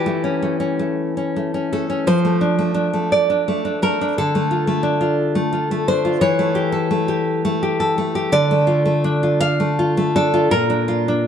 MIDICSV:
0, 0, Header, 1, 2, 480
1, 0, Start_track
1, 0, Key_signature, -1, "minor"
1, 0, Tempo, 734394
1, 1361, Time_signature, 6, 3, 24, 8
1, 1361, Tempo, 704225
1, 2801, Tempo, 652174
1, 3281, Tempo, 685714
1, 4721, Tempo, 714286
1, 6161, Tempo, 747198
1, 7590, End_track
2, 0, Start_track
2, 0, Title_t, "Nylon-string guitar"
2, 0, Program_c, 0, 24
2, 0, Note_on_c, 0, 52, 38
2, 0, Note_on_c, 0, 67, 51
2, 40, Note_on_c, 0, 57, 37
2, 155, Note_on_c, 0, 61, 34
2, 270, Note_off_c, 0, 57, 0
2, 278, Note_on_c, 0, 57, 34
2, 384, Note_off_c, 0, 61, 0
2, 392, Note_on_c, 0, 61, 36
2, 511, Note_off_c, 0, 57, 0
2, 519, Note_on_c, 0, 57, 32
2, 757, Note_off_c, 0, 61, 0
2, 765, Note_on_c, 0, 61, 31
2, 884, Note_off_c, 0, 57, 0
2, 892, Note_on_c, 0, 57, 30
2, 1000, Note_off_c, 0, 61, 0
2, 1008, Note_on_c, 0, 61, 37
2, 1105, Note_off_c, 0, 67, 0
2, 1120, Note_off_c, 0, 57, 0
2, 1128, Note_on_c, 0, 57, 35
2, 1130, Note_on_c, 0, 69, 51
2, 1231, Note_off_c, 0, 61, 0
2, 1239, Note_on_c, 0, 61, 37
2, 1334, Note_off_c, 0, 52, 0
2, 1351, Note_off_c, 0, 69, 0
2, 1353, Note_on_c, 0, 53, 43
2, 1355, Note_on_c, 0, 72, 71
2, 1357, Note_off_c, 0, 61, 0
2, 1360, Note_off_c, 0, 57, 0
2, 1474, Note_on_c, 0, 57, 36
2, 1584, Note_on_c, 0, 62, 42
2, 1696, Note_off_c, 0, 57, 0
2, 1704, Note_on_c, 0, 57, 33
2, 1804, Note_off_c, 0, 62, 0
2, 1812, Note_on_c, 0, 62, 39
2, 1934, Note_off_c, 0, 57, 0
2, 1942, Note_on_c, 0, 57, 35
2, 2044, Note_off_c, 0, 72, 0
2, 2068, Note_on_c, 0, 74, 59
2, 2181, Note_off_c, 0, 62, 0
2, 2190, Note_on_c, 0, 62, 37
2, 2305, Note_off_c, 0, 57, 0
2, 2314, Note_on_c, 0, 57, 37
2, 2420, Note_off_c, 0, 62, 0
2, 2428, Note_on_c, 0, 62, 35
2, 2540, Note_off_c, 0, 57, 0
2, 2542, Note_off_c, 0, 74, 0
2, 2547, Note_on_c, 0, 57, 36
2, 2551, Note_on_c, 0, 70, 63
2, 2669, Note_off_c, 0, 62, 0
2, 2678, Note_on_c, 0, 62, 42
2, 2769, Note_off_c, 0, 53, 0
2, 2782, Note_off_c, 0, 70, 0
2, 2791, Note_off_c, 0, 57, 0
2, 2791, Note_on_c, 0, 50, 41
2, 2792, Note_on_c, 0, 69, 59
2, 2796, Note_off_c, 0, 62, 0
2, 2916, Note_on_c, 0, 57, 40
2, 3031, Note_on_c, 0, 65, 41
2, 3145, Note_off_c, 0, 57, 0
2, 3154, Note_on_c, 0, 57, 40
2, 3268, Note_on_c, 0, 62, 43
2, 3384, Note_off_c, 0, 65, 0
2, 3393, Note_on_c, 0, 65, 41
2, 3627, Note_off_c, 0, 57, 0
2, 3635, Note_on_c, 0, 57, 41
2, 3748, Note_off_c, 0, 65, 0
2, 3756, Note_on_c, 0, 65, 37
2, 3878, Note_off_c, 0, 57, 0
2, 3886, Note_on_c, 0, 57, 43
2, 3964, Note_off_c, 0, 69, 0
2, 3991, Note_off_c, 0, 62, 0
2, 4005, Note_on_c, 0, 62, 38
2, 4005, Note_on_c, 0, 72, 68
2, 4113, Note_off_c, 0, 65, 0
2, 4122, Note_on_c, 0, 65, 45
2, 4203, Note_off_c, 0, 50, 0
2, 4229, Note_off_c, 0, 72, 0
2, 4235, Note_on_c, 0, 52, 49
2, 4237, Note_on_c, 0, 73, 60
2, 4238, Note_off_c, 0, 65, 0
2, 4239, Note_off_c, 0, 57, 0
2, 4239, Note_off_c, 0, 62, 0
2, 4361, Note_on_c, 0, 57, 46
2, 4473, Note_on_c, 0, 67, 43
2, 4592, Note_off_c, 0, 73, 0
2, 4595, Note_on_c, 0, 69, 41
2, 4714, Note_off_c, 0, 57, 0
2, 4723, Note_on_c, 0, 57, 45
2, 4832, Note_off_c, 0, 67, 0
2, 4840, Note_on_c, 0, 67, 48
2, 5078, Note_off_c, 0, 57, 0
2, 5086, Note_on_c, 0, 57, 46
2, 5198, Note_off_c, 0, 67, 0
2, 5206, Note_on_c, 0, 67, 40
2, 5314, Note_off_c, 0, 69, 0
2, 5323, Note_on_c, 0, 69, 49
2, 5435, Note_off_c, 0, 57, 0
2, 5443, Note_on_c, 0, 57, 44
2, 5551, Note_off_c, 0, 67, 0
2, 5559, Note_on_c, 0, 67, 50
2, 5654, Note_off_c, 0, 52, 0
2, 5673, Note_off_c, 0, 69, 0
2, 5674, Note_on_c, 0, 50, 55
2, 5676, Note_on_c, 0, 74, 78
2, 5680, Note_off_c, 0, 67, 0
2, 5682, Note_off_c, 0, 57, 0
2, 5800, Note_on_c, 0, 57, 46
2, 5907, Note_on_c, 0, 65, 50
2, 6024, Note_off_c, 0, 57, 0
2, 6032, Note_on_c, 0, 57, 40
2, 6158, Note_on_c, 0, 62, 50
2, 6270, Note_off_c, 0, 65, 0
2, 6278, Note_on_c, 0, 65, 45
2, 6372, Note_off_c, 0, 74, 0
2, 6391, Note_on_c, 0, 77, 83
2, 6508, Note_off_c, 0, 57, 0
2, 6515, Note_on_c, 0, 57, 42
2, 6630, Note_off_c, 0, 65, 0
2, 6638, Note_on_c, 0, 65, 41
2, 6749, Note_off_c, 0, 57, 0
2, 6756, Note_on_c, 0, 57, 50
2, 6856, Note_off_c, 0, 77, 0
2, 6867, Note_off_c, 0, 62, 0
2, 6874, Note_on_c, 0, 62, 43
2, 6874, Note_on_c, 0, 69, 74
2, 6982, Note_off_c, 0, 65, 0
2, 6989, Note_on_c, 0, 65, 45
2, 7085, Note_off_c, 0, 50, 0
2, 7100, Note_off_c, 0, 69, 0
2, 7102, Note_on_c, 0, 70, 81
2, 7103, Note_on_c, 0, 46, 53
2, 7110, Note_off_c, 0, 65, 0
2, 7111, Note_off_c, 0, 57, 0
2, 7111, Note_off_c, 0, 62, 0
2, 7221, Note_on_c, 0, 62, 41
2, 7339, Note_on_c, 0, 65, 47
2, 7461, Note_off_c, 0, 62, 0
2, 7468, Note_on_c, 0, 62, 42
2, 7590, Note_off_c, 0, 46, 0
2, 7590, Note_off_c, 0, 62, 0
2, 7590, Note_off_c, 0, 65, 0
2, 7590, Note_off_c, 0, 70, 0
2, 7590, End_track
0, 0, End_of_file